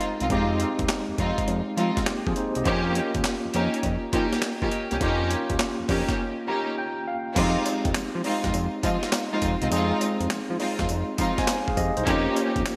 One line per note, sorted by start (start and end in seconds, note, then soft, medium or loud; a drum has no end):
0.00 0.26 G#3 medium
0.00 0.26 C4 medium
0.00 0.27 D#4 medium
0.00 0.27 G4 medium
0.00 closed hi-hat medium
0.20 0.32 C2 medium
0.20 0.29 G#3 medium
0.20 0.29 C4 medium
0.20 0.30 D#4 medium
0.20 0.30 F4 medium
0.20 closed hi-hat medium
0.29 0.65 F2 loud
0.29 2.61 G#3 medium
0.29 0.58 G#3 loud
0.29 2.03 C4 medium
0.29 0.58 C4 medium
0.29 0.58 D#4 medium
0.29 2.04 D#4 medium
0.29 0.58 F4 loud
0.29 2.04 G4 medium
0.29 kick loud
0.29 closed hi-hat medium
0.29 cowbell medium
0.60 closed hi-hat medium
0.79 0.86 D#2 medium
0.79 kick loud
0.79 closed hi-hat soft
0.89 snare loud
0.89 clap loud
0.89 closed hi-hat medium
0.89 cowbell medium
1.09 1.13 F2 soft
1.18 1.32 F2 loud
1.18 1.39 G#3 medium
1.18 1.39 C4 medium
1.18 1.39 D#4 medium
1.18 1.40 F4 medium
1.18 kick medium
1.18 closed hi-hat medium
1.18 cowbell medium
1.38 kick medium
1.38 closed hi-hat medium
1.48 1.62 F2 loud
1.48 closed hi-hat medium
1.48 cowbell medium
1.77 1.91 F3 medium
1.77 1.98 G#3 medium
1.77 1.98 C4 medium
1.77 1.98 D#4 medium
1.77 1.98 F4 medium
1.77 closed hi-hat medium
1.97 kick medium
1.97 snare medium
1.97 closed hi-hat medium
2.06 2.26 A#3 medium
2.06 2.26 G4 medium
2.06 snare loud
2.06 clap medium
2.06 closed hi-hat medium
2.06 cowbell medium
2.27 2.34 F3 loud
2.27 2.36 C4 medium
2.27 2.36 G#4 medium
2.27 kick medium
2.36 2.55 D#4 medium
2.36 2.55 C5 medium
2.36 closed hi-hat medium
2.55 2.63 C2 medium
2.55 2.67 G4 medium
2.55 2.84 D#5 medium
2.55 closed hi-hat medium
2.65 3.00 F2 loud
2.65 4.97 A#3 medium
2.65 2.93 A#3 loud
2.65 2.94 C#4 medium
2.65 4.97 C#4 medium
2.65 2.94 D#4 medium
2.65 4.98 F4 medium
2.65 2.94 G4 loud
2.65 4.98 G4 medium
2.65 kick loud
2.65 closed hi-hat medium
2.65 cowbell medium
2.95 closed hi-hat medium
3.14 3.22 D#2 medium
3.14 kick loud
3.14 closed hi-hat soft
3.24 snare loud
3.24 clap medium
3.24 closed hi-hat medium
3.24 cowbell medium
3.45 3.49 F2 medium
3.54 3.68 F2 loud
3.54 3.75 A#3 medium
3.54 3.75 C#4 medium
3.54 3.75 D#4 medium
3.54 3.75 G4 medium
3.54 closed hi-hat medium
3.54 cowbell medium
3.74 closed hi-hat medium
3.83 3.97 F2 loud
3.83 kick medium
3.83 closed hi-hat medium
3.83 cowbell medium
4.13 4.27 F3 loud
4.13 4.33 A#3 medium
4.13 4.34 C#4 medium
4.13 4.34 D#4 medium
4.13 4.34 G4 medium
4.13 kick loud
4.13 closed hi-hat medium
4.33 snare medium
4.33 closed hi-hat medium
4.42 snare loud
4.42 clap medium
4.42 closed hi-hat medium
4.42 cowbell medium
4.62 4.69 F3 loud
4.62 4.74 A#3 medium
4.62 4.74 C#4 medium
4.62 4.74 D#4 medium
4.62 4.74 G4 medium
4.62 kick medium
4.72 closed hi-hat medium
4.91 4.98 C2 medium
4.91 4.99 A#3 medium
4.91 5.00 C#4 medium
4.91 5.00 D#4 medium
4.91 5.00 G4 medium
4.91 closed hi-hat medium
5.00 5.35 F2 loud
5.00 7.32 A#3 medium
5.00 5.29 A#3 medium
5.00 5.29 C#4 medium
5.00 7.32 C#4 medium
5.00 5.29 D#4 medium
5.00 7.33 F4 medium
5.00 5.29 G4 loud
5.00 7.33 G4 medium
5.00 kick loud
5.00 closed hi-hat medium
5.00 cowbell medium
5.31 closed hi-hat medium
5.50 5.57 D#2 medium
5.50 kick medium
5.50 closed hi-hat soft
5.59 snare loud
5.59 clap medium
5.59 closed hi-hat medium
5.59 cowbell medium
5.80 5.83 F2 medium
5.89 6.03 F2 loud
5.89 6.10 A#3 medium
5.89 6.10 C#4 medium
5.89 6.10 D#4 medium
5.89 6.10 G4 medium
5.89 kick medium
5.89 open hi-hat medium
5.89 cowbell medium
6.08 kick loud
6.08 snare medium
6.08 closed hi-hat medium
6.47 6.68 A#3 medium
6.47 6.68 C#4 medium
6.47 6.69 D#4 medium
6.47 6.69 G4 medium
6.47 6.75 A#5 medium
6.78 7.05 G5 medium
7.08 7.35 F5 medium
7.36 7.57 F2 loud
7.36 7.64 G#3 loud
7.36 9.67 G#3 medium
7.36 7.64 C4 medium
7.36 9.68 C4 medium
7.36 7.64 D#4 medium
7.36 9.68 D#4 medium
7.36 7.64 F4 loud
7.36 9.69 G4 medium
7.36 kick loud
7.36 closed hi-hat medium
7.36 crash loud
7.36 tambourine medium
7.36 cowbell medium
7.65 closed hi-hat medium
7.65 tambourine medium
7.65 cowbell medium
7.85 7.92 F2 medium
7.85 kick loud
7.85 closed hi-hat medium
7.94 8.03 F3 medium
7.94 snare loud
7.94 clap loud
7.94 closed hi-hat medium
7.94 tambourine medium
7.94 cowbell medium
8.15 8.22 F3 loud
8.24 8.45 G#3 medium
8.24 8.45 C4 medium
8.24 8.45 D#4 medium
8.24 8.45 F4 medium
8.24 open hi-hat medium
8.24 cowbell medium
8.44 8.51 F2 medium
8.44 kick loud
8.44 snare medium
8.44 closed hi-hat medium
8.54 8.68 F2 loud
8.54 closed hi-hat medium
8.54 tambourine medium
8.54 cowbell medium
8.83 8.97 F3 loud
8.83 9.04 G#3 medium
8.83 9.04 C4 medium
8.83 9.04 D#4 medium
8.83 9.04 F4 medium
8.83 kick loud
8.83 closed hi-hat medium
8.83 tambourine medium
9.03 snare medium
9.03 closed hi-hat medium
9.12 snare loud
9.12 clap medium
9.12 closed hi-hat medium
9.12 tambourine medium
9.12 cowbell medium
9.32 9.44 G#3 medium
9.32 9.44 C4 medium
9.32 9.44 D#4 medium
9.32 9.44 F4 medium
9.42 9.56 F2 loud
9.42 kick medium
9.42 closed hi-hat medium
9.42 tambourine medium
9.62 9.69 C2 medium
9.62 9.70 G#3 medium
9.62 9.70 C4 medium
9.62 9.71 D#4 medium
9.62 9.71 F4 medium
9.62 closed hi-hat medium
9.70 9.92 F2 loud
9.70 12.02 G#3 medium
9.70 9.99 G#3 medium
9.70 12.03 C4 medium
9.70 9.99 C4 medium
9.70 11.16 D#4 medium
9.70 10.00 D#4 medium
9.70 10.00 F4 loud
9.70 11.16 G#4 medium
9.70 closed hi-hat medium
9.70 tambourine medium
9.70 cowbell medium
10.01 closed hi-hat medium
10.01 tambourine medium
10.01 cowbell medium
10.21 10.27 F2 medium
10.21 closed hi-hat medium
10.30 snare loud
10.30 clap loud
10.30 closed hi-hat medium
10.30 tambourine medium
10.30 cowbell medium
10.50 10.57 F3 medium
10.59 10.80 G#3 medium
10.59 10.80 C4 medium
10.59 10.81 D#4 medium
10.59 10.81 F4 medium
10.59 open hi-hat medium
10.59 cowbell medium
10.79 10.86 F2 loud
10.79 kick loud
10.79 snare medium
10.79 closed hi-hat medium
10.89 11.03 F2 loud
10.89 closed hi-hat medium
10.89 tambourine medium
10.89 cowbell medium
11.18 11.32 F3 medium
11.18 11.39 G#3 medium
11.18 11.39 C4 medium
11.18 11.39 D#4 medium
11.18 11.39 F4 medium
11.18 kick loud
11.18 closed hi-hat medium
11.18 tambourine medium
11.38 11.67 C5 medium
11.38 11.67 G#5 medium
11.38 kick medium
11.38 snare medium
11.38 closed hi-hat medium
11.47 snare loud
11.47 clap medium
11.47 closed hi-hat medium
11.47 tambourine medium
11.47 cowbell medium
11.68 11.78 G#4 medium
11.68 11.77 F5 medium
11.68 kick medium
11.77 11.91 F2 loud
11.77 11.97 G4 medium
11.77 11.96 D#5 medium
11.77 kick medium
11.77 closed hi-hat medium
11.77 tambourine medium
11.97 12.04 C2 medium
11.97 12.26 D#4 medium
11.97 12.25 C5 medium
11.97 closed hi-hat medium
12.06 12.28 F2 loud
12.06 12.76 A#3 medium
12.06 12.34 A#3 loud
12.06 12.35 C#4 loud
12.06 12.76 C#4 medium
12.06 12.35 D#4 loud
12.06 12.76 F4 medium
12.06 12.35 G4 loud
12.06 12.76 G4 medium
12.06 kick loud
12.06 closed hi-hat medium
12.06 tambourine medium
12.06 cowbell medium
12.36 closed hi-hat medium
12.36 tambourine medium
12.36 cowbell medium
12.56 12.63 F2 medium
12.56 kick medium
12.56 closed hi-hat soft
12.66 snare loud
12.66 clap loud
12.66 closed hi-hat medium
12.66 tambourine medium
12.66 cowbell medium